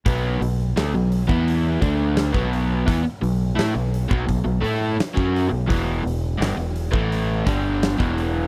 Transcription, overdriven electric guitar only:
\new Staff \with { instrumentName = "Overdriven electric guitar" } { \clef bass \time 4/4 \key e \lydian \tempo 4 = 85 <b, fis b>8 <b, fis>8 <d a>16 <b, fis>8 <e b e'>8. <d a d'>8. <b, fis b>8. | <e b>16 r16 <b, fis>8 <a e'>16 <b, fis>8 <b, fis>16 <b, fis>16 <b, fis>16 <a e' a'>8 r16 <fis cis' fis'>8 <b, fis>16 | <e, b, e>8 <e, b,>8 <g, d>16 <e, b,>8 <a, e a>8. <g, d g>8. <e, b, e>8. | }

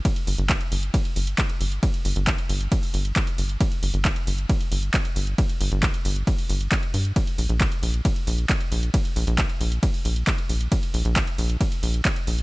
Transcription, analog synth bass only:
\new Staff \with { instrumentName = "Analog synth bass" } { \clef bass \time 4/4 \key g \dorian \tempo 4 = 135 r8 g,,16 g,,8 r16 g,,8 r8 g,,8 r8 g,,8 | r8 g,,16 g,,8 r16 g,,8 r8 g,,8 r8 g,,8 | r8 g,,16 g,,8 r16 g,,8 r8 g,,8 r8 g,,8 | r8 g,,16 g,,8 r16 g,,8 r8 g,,8 r8 g,8 |
r8 bes,,16 bes,,8 r16 bes,,8 r8 bes,,8 r8 bes,,8 | r8 bes,,16 bes,,8 r16 bes,,8 r8 bes,,8 r8 bes,,8 | r8 bes,,16 bes,,8 r16 bes,,8 r8 bes,,8 r8 bes,,8 | }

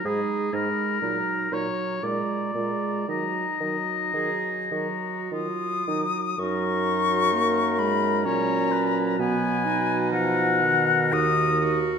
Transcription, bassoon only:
\new Staff \with { instrumentName = "Bassoon" } { \clef bass \time 3/4 \key ges \major \tempo 4 = 62 aes,8 aes,8 bes,8 bes,8 bes,8 bes,8 | ees8 ees8 ees8 ees8 ees8 ees8 | ges,2 bes,4 | b,2 dis,4 | }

